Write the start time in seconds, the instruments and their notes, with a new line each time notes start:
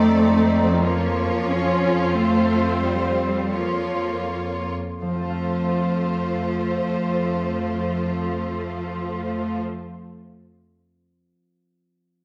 Already playing: double bass section F2, harp F3 C4 D#4 A4, cello section A3, viola section C4, violin section D#4 D5
0.21 violin section D#4
0.65 harp F3 C#4
0.73 harp F4
0.78 viola section A#3, harp A#4
0.84 cello section F3, violin section F4 C#5
1.46 viola section C#4
2.15 cello section A3, viola section C4, violin section C5
2.84 cello section G3
3.53 cello section F3, viola section A#3, violin section F4 C#5
5.01 double bass section F2, harp F3, cello section F3, viola section A3, violin section F4 C5
5.09 harp C4
5.15 harp F4
5.22 harp A4
5.30 harp F5